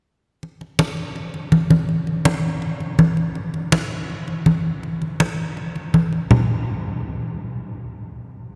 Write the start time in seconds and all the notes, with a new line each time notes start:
0.43 high conga
0.61 high conga
0.79 high conga
0.97 high conga
1.16 high conga
1.34 high conga
1.52 high conga
1.70 high conga
1.89 high conga
2.07 high conga
2.25 high conga
2.62 high conga
2.80 high conga
2.99 high conga
3.17 high conga
3.35 high conga
3.54 high conga
3.72 high conga
3.91 high conga
4.10 high conga
4.28 high conga
4.46 high conga
4.83 high conga
5.02 high conga
5.20 high conga
5.57 high conga
5.76 high conga
5.94 high conga
6.13 high conga
6.31 low conga